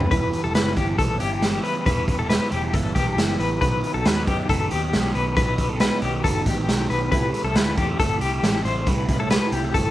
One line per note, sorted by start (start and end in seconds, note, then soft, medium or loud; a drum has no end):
0.00 0.10 G3 medium
0.00 0.11 A3 medium
0.00 0.12 D4 medium
0.00 0.11 G4 medium
0.00 0.11 B4 medium
0.00 floor tom medium
0.11 0.30 E1 medium
0.11 0.44 E3 medium
0.11 0.44 G3 medium
0.11 0.44 B3 medium
0.11 0.42 E4 medium
0.11 0.42 B4 medium
0.11 kick loud
0.11 closed hi-hat medium
0.33 closed hi-hat medium
0.43 0.54 E1 medium
0.43 0.77 G3 soft
0.43 0.77 B3 soft
0.43 0.77 E4 medium
0.43 0.55 A4 medium
0.55 0.74 F#1 medium
0.55 0.77 B4 medium
0.55 snare loud
0.55 closed hi-hat medium
0.76 0.96 G1 medium
0.76 1.18 E3 medium
0.76 1.19 G3 medium
0.76 1.21 B3 medium
0.76 1.21 E4 medium
0.76 0.98 G4 medium
0.76 kick medium
0.76 closed hi-hat medium
0.98 1.17 B1 medium
0.98 1.20 A4 medium
0.98 kick medium
0.98 closed hi-hat medium
1.19 1.58 G1 medium
1.19 1.40 E3 medium
1.19 1.41 G3 medium
1.19 1.42 B3 medium
1.19 1.43 E4 medium
1.19 1.62 G4 medium
1.19 closed hi-hat medium
1.41 1.85 E3 medium
1.41 1.85 G3 medium
1.41 1.87 B3 medium
1.41 1.86 E4 medium
1.41 snare medium
1.41 closed hi-hat medium
1.64 1.85 B4 medium
1.64 closed hi-hat soft
1.86 2.38 E1 medium
1.86 2.19 E3 medium
1.86 2.19 G3 medium
1.86 2.19 B3 medium
1.86 2.17 E4 medium
1.86 2.17 B4 medium
1.86 kick medium
1.86 closed hi-hat medium
2.08 kick medium
2.08 closed hi-hat medium
2.18 2.51 G3 soft
2.18 2.51 B3 soft
2.18 2.52 E4 soft
2.18 2.29 A4 medium
2.30 2.52 B4 medium
2.30 snare loud
2.30 closed hi-hat medium
2.50 2.71 E1 medium
2.50 2.93 E3 medium
2.50 2.94 G3 medium
2.50 2.96 B3 medium
2.50 2.96 E4 medium
2.50 2.73 G4 medium
2.50 closed hi-hat medium
2.73 2.93 G1 medium
2.73 2.95 A4 medium
2.73 kick medium
2.73 closed hi-hat medium
2.94 3.15 B1 medium
2.94 3.14 E3 medium
2.94 3.15 G3 medium
2.94 3.16 B3 medium
2.94 3.17 E4 medium
2.94 3.37 G4 medium
2.94 kick medium
2.94 snare soft
2.94 closed hi-hat medium
3.15 3.36 F#1 medium
3.15 3.60 E3 medium
3.15 3.61 G3 medium
3.15 3.62 B3 medium
3.15 3.62 E4 medium
3.15 snare medium
3.15 closed hi-hat medium
3.39 3.58 A1 medium
3.39 3.60 B4 medium
3.39 closed hi-hat medium
3.60 3.80 B1 loud
3.60 3.94 B2 medium
3.60 3.94 D#3 medium
3.60 3.95 F#3 medium
3.60 3.94 B3 medium
3.60 3.93 D#4 medium
3.60 3.92 B4 medium
3.60 kick loud
3.60 closed hi-hat medium
3.84 closed hi-hat medium
3.94 4.04 B1 medium
3.94 4.27 F#3 soft
3.94 4.27 B3 soft
3.94 4.27 D#4 soft
3.94 4.06 A4 medium
4.05 4.24 D#2 medium
4.05 4.27 B4 medium
4.05 snare loud
4.05 closed hi-hat medium
4.27 4.46 F#2 medium
4.27 4.68 D#3 medium
4.27 4.70 F#3 medium
4.27 4.70 B3 medium
4.27 4.71 D#4 medium
4.27 4.49 G4 medium
4.27 kick medium
4.27 closed hi-hat medium
4.49 4.68 F#1 medium
4.49 4.71 A4 medium
4.49 kick medium
4.49 closed hi-hat medium
4.70 4.96 D#2 medium
4.70 4.91 D#3 medium
4.70 4.92 F#3 medium
4.70 4.93 B3 medium
4.70 4.93 D#4 medium
4.70 5.12 G4 medium
4.70 closed hi-hat medium
4.92 5.12 B1 medium
4.92 5.35 D#3 medium
4.92 5.36 F#3 medium
4.92 5.37 B3 medium
4.92 5.36 D#4 medium
4.92 snare medium
4.92 closed hi-hat medium
5.15 5.34 B1 medium
5.15 5.35 B4 medium
5.15 closed hi-hat medium
5.36 5.89 B1 medium
5.36 5.69 B2 medium
5.36 5.70 D#3 medium
5.36 5.70 F#3 medium
5.36 5.69 B3 medium
5.36 5.68 D#4 medium
5.36 5.69 B4 medium
5.36 kick medium
5.36 closed hi-hat medium
5.58 kick medium
5.58 closed hi-hat medium
5.69 6.02 F#3 soft
5.69 6.03 B3 soft
5.69 6.02 D#4 soft
5.69 5.80 A4 medium
5.80 6.02 B4 medium
5.80 snare loud
5.80 closed hi-hat medium
6.02 6.21 B1 medium
6.02 6.44 D#3 medium
6.02 6.46 F#3 medium
6.02 6.47 B3 medium
6.02 6.48 D#4 medium
6.02 6.24 G4 medium
6.02 closed hi-hat medium
6.24 6.43 F#1 medium
6.24 6.46 A4 medium
6.24 kick medium
6.24 closed hi-hat medium
6.45 6.65 A1 medium
6.45 6.66 D#3 medium
6.45 6.68 F#3 medium
6.45 6.68 B3 medium
6.45 6.69 D#4 medium
6.45 6.87 G4 medium
6.45 kick medium
6.45 snare soft
6.45 closed hi-hat medium
6.67 6.87 B1 medium
6.67 7.10 D#3 medium
6.67 7.11 F#3 medium
6.67 7.11 B3 medium
6.67 7.12 D#4 medium
6.67 snare medium
6.67 closed hi-hat medium
6.90 7.09 B1 medium
6.90 7.10 B4 medium
6.90 closed hi-hat medium
7.10 7.30 C2 medium
7.10 7.44 C3 medium
7.10 7.45 G3 medium
7.10 7.44 A3 medium
7.10 7.42 E4 medium
7.10 7.43 B4 medium
7.10 kick loud
7.10 closed hi-hat medium
7.34 closed hi-hat medium
7.43 7.54 C2 medium
7.43 7.76 G3 soft
7.43 7.77 A3 soft
7.43 7.77 E4 soft
7.43 7.56 A4 medium
7.55 7.74 D2 medium
7.55 7.77 B4 medium
7.55 snare loud
7.55 closed hi-hat medium
7.76 7.96 E2 medium
7.76 8.19 C3 medium
7.76 8.21 G3 medium
7.76 8.21 A3 medium
7.76 8.22 E4 medium
7.76 7.99 G4 medium
7.76 kick medium
7.76 closed hi-hat medium
8.00 8.18 G1 medium
8.00 8.21 A4 medium
8.00 kick medium
8.00 closed hi-hat medium
8.20 8.39 C2 medium
8.20 8.41 C3 medium
8.20 8.42 G3 medium
8.20 8.43 A3 medium
8.20 8.63 G4 medium
8.20 closed hi-hat medium
8.24 8.44 E4 medium
8.42 8.62 A1 medium
8.42 8.85 C3 medium
8.42 8.86 G3 medium
8.42 8.86 A3 medium
8.42 8.87 E4 medium
8.42 snare medium
8.42 closed hi-hat medium
8.65 8.84 A1 medium
8.65 8.88 C5 medium
8.65 closed hi-hat medium
8.86 9.39 C2 medium
8.86 9.19 C3 medium
8.86 9.20 G3 medium
8.86 9.19 A3 medium
8.86 9.18 E4 medium
8.86 9.18 B4 medium
8.86 kick loud
8.86 closed hi-hat medium
9.09 kick medium
9.09 closed hi-hat medium
9.19 9.51 G3 soft
9.19 9.52 A3 soft
9.19 9.52 E4 medium
9.19 9.30 A4 medium
9.30 9.53 B4 medium
9.30 snare loud
9.30 closed hi-hat medium
9.51 9.71 C2 medium
9.51 9.91 C3 medium
9.51 9.91 G3 medium
9.51 9.91 A3 medium
9.51 9.91 E4 medium
9.51 9.74 G4 medium
9.51 closed hi-hat medium
9.74 9.91 G1 medium
9.74 9.91 A4 medium
9.74 kick medium
9.74 closed hi-hat medium